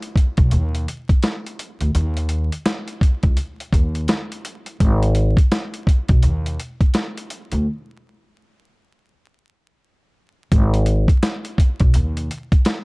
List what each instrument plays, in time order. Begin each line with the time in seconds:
0.02 closed hi-hat
0.16 kick, closed hi-hat
0.37 upright bass B1, kick, closed hi-hat
0.51 upright bass D#2, closed hi-hat
0.75 closed hi-hat
0.88 closed hi-hat
1.09 kick, closed hi-hat
1.22 snare, closed hi-hat
1.46 closed hi-hat
1.59 closed hi-hat
1.81 upright bass D2, closed hi-hat
1.95 upright bass D#2, closed hi-hat
2.17 closed hi-hat
2.29 closed hi-hat
2.52 closed hi-hat
2.66 snare, closed hi-hat
2.88 closed hi-hat
3.01 kick, closed hi-hat
3.23 upright bass C#2, kick, closed hi-hat
3.37 closed hi-hat
3.60 closed hi-hat
3.73 upright bass D#2, kick, closed hi-hat
3.95 closed hi-hat
4.08 snare, closed hi-hat
4.32 closed hi-hat
4.45 closed hi-hat
4.66 closed hi-hat
4.80 upright bass G#1, kick, closed hi-hat
5.02 closed hi-hat
5.15 closed hi-hat
5.37 kick, closed hi-hat
5.52 snare, closed hi-hat
5.74 closed hi-hat
5.87 kick, closed hi-hat
6.09 upright bass B1, kick, closed hi-hat
6.23 upright bass D#2, closed hi-hat
6.46 closed hi-hat
6.60 closed hi-hat
6.81 kick, closed hi-hat
6.94 snare, closed hi-hat
7.17 closed hi-hat
7.30 closed hi-hat
7.52 upright bass D2, closed hi-hat
10.52 upright bass G#1, kick, closed hi-hat
10.74 closed hi-hat
10.86 closed hi-hat
11.08 kick, closed hi-hat
11.23 snare, closed hi-hat
11.45 closed hi-hat
11.58 kick, closed hi-hat
11.80 upright bass B1, kick, closed hi-hat
11.94 upright bass D#2, closed hi-hat
12.17 closed hi-hat
12.31 closed hi-hat
12.52 kick, closed hi-hat
12.65 snare, closed hi-hat